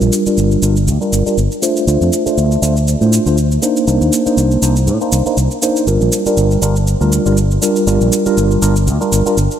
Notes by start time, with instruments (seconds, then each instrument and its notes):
Already playing: tine electric piano G3 D4 F4 A#4
0.01 fingered electric bass A#1, shaker
0.12 shaker
0.26 tine electric piano G3 D4 F4 A#4, muted fingered electric bass stroke, shaker
0.37 fingered electric bass G1, shaker
0.51 shaker
0.62 fingered electric bass G1, tine electric piano G3 D4 F4 A#4, shaker
0.76 shaker
0.87 fingered electric bass D2, shaker
1.01 tine electric piano G3 D4 F4 A#4, shaker
1.12 fingered electric bass G1, shaker
1.26 tine electric piano G3 D4 F4 A#4, shaker
1.37 fingered electric bass G1, shaker
1.52 shaker
1.62 tine electric piano A3 D4 F4 C5, shaker
1.77 shaker
1.87 fingered electric bass D2, tine electric piano A3 D4 F4 C5, shaker
2.01 fingered electric bass F2, shaker
2.13 shaker
2.26 tine electric piano A3 D4 F4 C5, muted fingered electric bass stroke, shaker
2.37 fingered electric bass D2, shaker
2.52 shaker
2.62 fingered electric bass D2, tine electric piano A3 D4 F4 C5, shaker
2.77 shaker
2.88 shaker
3.01 fingered electric bass A2, tine electric piano A3 D4 F4 C5, shaker
3.13 shaker
3.26 fingered electric bass D2, tine electric piano A3 D4 F4 C5, shaker
3.38 shaker
3.52 shaker
3.62 tine electric piano A#3 D4 D#4 C5, shaker
3.77 shaker
3.87 fingered electric bass C2, tine electric piano A#3 D4 D#4 C5, shaker
4.01 fingered electric bass D#2, shaker
4.13 shaker
4.26 tine electric piano A#3 D4 D#4 C5, muted fingered electric bass stroke, shaker
4.37 fingered electric bass C2, shaker
4.51 shaker
4.62 fingered electric bass C2, tine electric piano A#3 D4 D#4 C5, shaker
4.76 shaker
4.87 fingered electric bass A2, shaker
5.01 tine electric piano A#3 D4 D#4 C5, shaker
5.12 fingered electric bass C2, shaker
5.26 tine electric piano A#3 D4 D#4 C5, shaker
5.37 fingered electric bass C2, shaker
5.51 shaker
5.62 tine electric piano A#3 D4 D#4 C5, shaker
5.76 shaker
5.87 fingered electric bass G1, tine electric piano G3 D4 F4 A#4, shaker
6.01 fingered electric bass A#1, shaker
6.12 shaker
6.26 tine electric piano G3 D4 F4 A#4, muted fingered electric bass stroke, shaker
6.37 fingered electric bass G1, shaker
6.51 shaker
6.62 fingered electric bass G1, tine electric piano G3 D4 F4 A#4, shaker
6.76 shaker
6.87 shaker
7.01 fingered electric bass D2, tine electric piano G3 D4 F4 A#4, shaker
7.12 shaker
7.26 fingered electric bass G1, tine electric piano G3 D4 F4 A#4, shaker
7.37 shaker
7.51 shaker
7.62 tine electric piano G3 D4 F4 A#4, shaker
7.76 shaker
7.87 fingered electric bass G1, tine electric piano G3 D4 F4 A#4, shaker
8.01 fingered electric bass A#1, shaker
8.12 shaker
8.26 tine electric piano G3 D4 F4 A#4, muted fingered electric bass stroke, shaker
8.37 fingered electric bass G1, shaker
8.51 shaker
8.62 fingered electric bass G1, tine electric piano G3 D4 F4 A#4, shaker
8.76 shaker
8.87 fingered electric bass D2, shaker
9.00 tine electric piano G3 D4 F4 A#4, shaker
9.12 fingered electric bass G1, shaker
9.26 tine electric piano G3 D4 F4 A#4, shaker
9.37 fingered electric bass G1, shaker
9.51 shaker